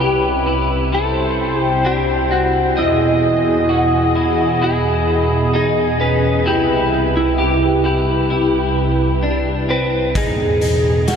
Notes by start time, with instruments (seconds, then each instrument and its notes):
Already playing: analog synth pad C2 C3 E4 B4, electric slide guitar B4
0.00 clean electric guitar G4
0.46 clean electric guitar E4
0.92 clean electric guitar E4, electric slide guitar A4, analog synth pad C5
1.61 electric slide guitar G4
1.85 clean electric guitar D4, electric slide guitar G4
2.31 clean electric guitar C4, electric slide guitar F#4
2.77 analog synth pad E2 B2 G#4 D#5, electric slide guitar E4, clean electric guitar D#5
3.69 clean electric guitar F#4
4.15 clean electric guitar E4
4.62 clean electric guitar E4, electric slide guitar G#4
5.54 clean electric guitar D#4, electric slide guitar G#4
6.00 clean electric guitar C#4, electric slide guitar B4
6.46 analog synth pad C2 C3 E4 B4, clean electric guitar E4, electric slide guitar G4
7.17 electric slide guitar E4
7.38 clean electric guitar G4
7.84 clean electric guitar E4, electric slide guitar G4
8.30 clean electric guitar E4
9.23 clean electric guitar D4
9.69 clean electric guitar C4, electric slide guitar B4
10.15 analog synth pad E2 B2 G#4 D#5, clean electric guitar D#4, electric slide guitar G#4, kick, closed hi-hat
10.61 closed hi-hat
11.08 clean electric guitar F#4, snare, closed hi-hat